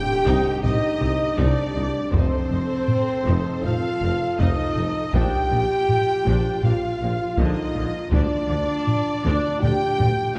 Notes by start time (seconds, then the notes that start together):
Already playing: C3 G4 G5, sub drop
0.26 C2 C3 D#4
0.62 C2 C3 D#4 D#5, taiko low-mid
1.00 C2 C3 C4
1.37 C2 C3 D4 D#4 D5, taiko
1.74 C2 C3 D#4
2.12 F1 F2 C4 D#4 A4 C5, taiko
2.50 F1 F2 D#4
2.88 taiko low-mid
3.25 F1 F2 D#4
3.63 F1 F2 D#4 F4 F5, taiko low-mid
4.01 F1 F2 C4
4.38 F1 F2 D#4 D#5, taiko
4.76 F1 F2 D#4
5.13 A#1 A#2 D4 F4 G4 G5, taiko
5.51 A#1 A#2 D4
5.89 taiko low-mid
6.26 A#1 A#2 D4
6.63 A#1 A#2 D4 F4 F5, taiko low-mid
7.01 A#1 A#2 A#3
7.37 A#1 A#2 D3 D#4 D#5, taiko
7.75 A#1 A#2 D3
8.10 D2 D3 D4 D5, taiko
8.48 D2 D3 D4
8.87 taiko low-mid
9.24 D2 D3 D4
9.60 D2 D3 D4 G4 G5, taiko low-mid
9.99 D2 D3 A3, taiko low-mid
10.35 F4